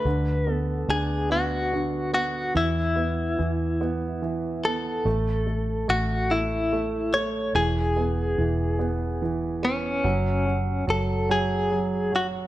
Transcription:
0.00 0.52 B4 medium
0.05 0.85 D2 medium
0.05 1.71 D3 soft
0.47 1.29 B3 soft
0.52 0.90 A4 medium
0.89 2.51 D2 medium
0.89 2.52 D4 soft
0.89 1.31 G#4 medium
1.30 2.12 B3 soft
1.30 2.11 F#4 medium
1.73 2.53 D3 soft
2.13 2.54 B3 soft
2.13 2.53 F#4 medium
2.55 3.35 E2 medium
2.55 3.37 E3 medium
2.55 4.71 E4 medium
2.96 3.79 B3 soft
3.38 5.02 E2 medium
3.38 4.21 E3 medium
3.81 4.63 B3 soft
4.22 5.03 E3 soft
4.65 5.05 B3 soft
4.65 5.90 A4 medium
5.05 5.85 A1 medium
5.05 5.45 A3 medium
5.47 5.87 A3 soft
5.88 7.51 A1 medium
5.88 6.29 A3 soft
5.88 6.32 F#4 medium
6.31 6.71 A3 soft
6.31 7.16 E4 medium
6.72 7.13 A3 soft
7.14 7.54 A3 soft
7.14 7.55 C#5 medium
7.55 8.34 E1 loud
7.55 8.37 E3 medium
7.55 9.69 G#4 medium
7.96 8.78 B3 soft
8.38 10.01 E1 medium
8.38 9.20 E3 medium
8.79 9.61 B3 soft
9.22 10.02 E3 medium
9.63 10.03 B3 soft
9.63 10.84 C#4 medium
10.04 10.84 F#1 loud
10.04 10.44 F#3 medium
10.46 10.86 F#3 soft
10.87 12.47 F#1 medium
10.87 11.28 F#3 soft
10.87 11.31 A4 medium
11.29 11.70 F#3 medium
11.29 12.15 G#4 medium
11.71 12.10 F#3 soft
12.12 12.47 F#3 soft
12.12 12.26 F#4 medium

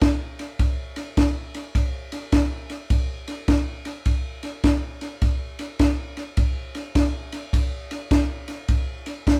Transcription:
0.01 kick medium
0.01 snare loud
0.01 ride medium
0.39 snare soft
0.39 ride medium
0.59 kick medium
0.59 snare soft
0.59 ride medium
0.96 snare soft
0.96 ride medium
1.17 kick medium
1.17 snare medium
1.17 ride medium
1.54 snare soft
1.54 ride medium
1.75 kick medium
1.75 snare soft
1.75 ride medium
2.12 snare soft
2.12 ride medium
2.32 kick medium
2.32 snare loud
2.32 ride medium
2.70 snare soft
2.70 ride medium
2.90 kick medium
2.90 snare soft
2.90 ride medium
3.28 snare soft
3.28 ride medium
3.48 kick medium
3.48 snare loud
3.48 ride medium
3.85 snare soft
3.85 ride medium
4.06 kick medium
4.06 snare soft
4.06 ride medium
4.43 snare soft
4.43 ride medium
4.64 kick medium
4.64 snare loud
4.64 ride medium
5.01 snare soft
5.01 ride medium
5.22 kick medium
5.22 snare soft
5.22 ride medium
5.59 snare soft
5.59 ride medium
5.79 kick medium
5.79 snare loud
5.79 ride medium
6.17 snare soft
6.17 ride medium
6.37 kick medium
6.37 snare soft
6.37 ride medium
6.75 snare soft
6.75 ride medium
6.95 kick medium
6.95 snare medium
6.95 ride medium
7.32 snare soft
7.32 ride medium
7.53 kick medium
7.53 snare soft
7.53 ride medium
7.91 snare soft
7.91 ride medium
8.11 kick medium
8.11 snare loud
8.11 ride medium
8.48 snare soft
8.48 ride medium
8.68 kick medium
8.68 snare soft
8.68 ride medium
9.06 snare soft
9.06 ride medium
9.27 kick medium
9.27 snare medium
9.27 ride medium

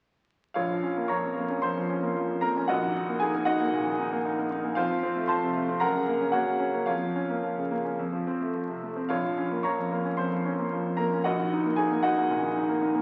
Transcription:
0.54 1.60 A#1 soft
0.54 1.06 F4 soft
0.54 1.06 C#5 soft
0.54 1.09 F5 medium
0.70 0.91 F3 soft
0.83 1.05 C#4 soft
0.97 1.18 A#3 soft
1.08 1.31 F3 soft
1.08 1.59 C#5 soft
1.08 1.59 A#5 soft
1.08 1.62 C#6 medium
1.24 1.45 F2 soft
1.37 1.58 A#3 soft
1.50 1.71 C#4 soft
1.62 1.85 F2 soft
1.62 2.39 C5 soft
1.62 2.42 C6 medium
1.77 1.98 F3 soft
1.89 2.11 C#4 soft
2.03 2.24 A#3 soft
2.17 2.38 F3 soft
2.30 2.51 F2 soft
2.41 2.64 A#3 soft
2.41 2.67 A#4 soft
2.41 2.69 A#5 medium
2.57 2.70 C#4 soft
2.68 3.70 A#1 medium
2.68 3.18 F#4 soft
2.68 3.17 D#5 soft
2.68 3.20 F#5 medium
2.82 3.03 D#3 soft
2.96 3.16 D#4 soft
3.09 3.29 A#3 soft
3.20 3.42 D#4 soft
3.20 3.45 G#4 soft
3.20 3.46 G#5 medium
3.34 3.55 A#3 soft
3.45 3.68 D#4 soft
3.45 4.72 F#4 soft
3.45 4.72 D#5 medium
3.45 4.76 F#5 medium
3.60 3.81 A#3 soft
3.73 3.94 A#2 soft
3.86 4.07 D#3 soft
3.99 4.20 D#4 soft
4.12 4.33 A#3 soft
4.25 4.46 D#4 soft
4.38 4.59 A#3 soft
4.51 4.72 D#4 soft
4.64 4.77 A#3 soft
4.75 5.79 F2 medium
4.75 5.26 F4 medium
4.75 5.25 C5 medium
4.75 5.28 F5 medium
4.90 5.11 F3 soft
5.03 5.24 C4 soft
5.16 5.37 A3 soft
5.27 5.50 F3 soft
5.27 5.78 C5 medium
5.27 5.78 A5 medium
5.27 5.81 C6 medium
5.43 5.64 C3 soft
5.55 5.76 A3 soft
5.69 5.82 C4 soft
5.80 6.85 F#2 medium
5.80 6.30 A#4 medium
5.80 6.30 F#5 soft
5.80 6.33 A#5 medium
5.95 6.15 C#3 soft
6.08 6.28 A#3 soft
6.21 6.42 C#4 soft
6.32 6.55 A#3 soft
6.32 6.84 F#4 soft
6.32 6.84 C#5 soft
6.32 6.87 F#5 medium
6.47 6.69 C#3 soft
6.59 6.82 C#4 soft
6.74 6.88 A#3 soft
6.86 7.96 F2 soft
6.86 8.51 F4 soft
6.86 8.51 C#5 soft
6.86 8.54 F5 medium
7.01 7.24 F3 soft
7.16 7.38 C#4 soft
7.29 7.52 A#3 soft
7.43 7.66 F3 soft
7.57 7.79 C#3 soft
7.71 7.94 A#3 soft
7.85 7.99 C#4 soft
7.99 9.08 F2 soft
8.13 8.36 F3 soft
8.27 8.50 C4 soft
8.41 8.64 A3 soft
8.54 8.77 F3 soft
8.69 8.92 C3 soft
8.83 9.05 A3 soft
8.96 9.11 C4 soft
9.09 10.15 A#1 soft
9.09 9.61 F4 soft
9.09 9.61 C#5 soft
9.09 9.64 F5 medium
9.24 9.46 F3 soft
9.38 9.60 C#4 soft
9.51 9.73 A#3 soft
9.63 9.87 F3 soft
9.63 10.15 C#5 soft
9.63 10.15 A#5 soft
9.63 10.18 C#6 medium
9.79 10.00 F2 soft
9.92 10.13 A#3 soft
10.05 10.27 C#4 soft
10.17 10.40 F2 soft
10.17 10.95 C5 soft
10.17 10.98 C6 medium
10.32 10.54 F3 soft
10.46 10.67 C#4 soft
10.59 10.80 A#3 soft
10.72 10.94 F3 soft
10.86 11.07 F2 soft
10.97 11.20 A#3 soft
10.97 11.23 A#4 soft
10.97 11.24 A#5 medium
11.13 11.26 C#4 soft
11.24 12.27 A#1 medium
11.24 11.74 F#4 soft
11.24 11.74 D#5 soft
11.24 11.77 F#5 medium
11.39 11.60 D#3 soft
11.53 11.73 D#4 soft
11.65 11.86 A#3 soft
11.76 11.99 D#4 soft
11.76 12.02 G#4 soft
11.76 12.03 G#5 medium
11.91 12.12 A#3 soft
12.03 12.25 D#4 soft
12.03 13.02 F#4 medium
12.03 13.02 D#5 medium
12.03 13.02 F#5 medium
12.17 12.38 A#3 soft
12.30 12.51 A#2 soft
12.43 12.63 D#3 soft
12.56 12.76 D#4 soft
12.69 12.89 A#3 soft
12.82 13.02 D#4 soft
12.95 13.02 A#3 soft

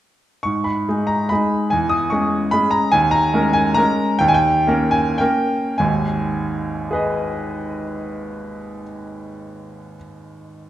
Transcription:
0.43 0.86 G#2 soft
0.43 0.65 C#6 medium
0.64 1.08 B5 medium
0.88 1.27 G#3 soft
0.88 1.27 D#4 soft
0.88 1.27 G#4 soft
1.07 1.29 A#5 medium
1.29 1.68 G#3 soft
1.29 1.69 D#4 soft
1.29 1.69 G#4 soft
1.29 1.71 B5 medium
1.70 2.11 E2 medium
1.70 1.91 G#5 medium
1.89 2.10 D#6 medium
2.10 2.48 G#3 soft
2.10 2.49 C#4 soft
2.10 2.49 G#4 soft
2.10 2.51 C#6 medium
2.51 2.89 G#3 soft
2.51 2.89 C#4 soft
2.51 2.90 G#4 soft
2.51 2.72 B5 medium
2.71 2.92 A#5 medium
2.92 3.32 D#2 medium
2.92 3.12 G#5 medium
3.11 3.54 A#5 medium
3.33 3.73 G#3 soft
3.33 3.73 C#4 soft
3.33 3.73 A#4 medium
3.53 3.76 G#5 medium
3.74 4.17 G#3 medium
3.74 4.17 C#4 soft
3.74 4.17 A#4 medium
3.74 4.20 A#5 medium
4.19 4.66 D#2 medium
4.19 4.27 G5 medium
4.28 4.36 G#5 medium
4.34 4.92 G5 medium
4.67 5.16 A#3 medium
4.67 5.17 C#4 soft
4.67 5.17 A#4 medium
4.91 5.19 G#5 medium
5.18 5.75 A#3 soft
5.18 5.75 C#4 soft
5.18 5.75 A#4 medium
5.18 5.78 G5 medium
5.78 8.83 G#1 medium
5.78 8.83 D#2 medium
5.78 8.81 G#5 medium
6.91 9.94 G#4 soft
6.91 9.96 B4 soft
6.91 9.97 D#5 soft

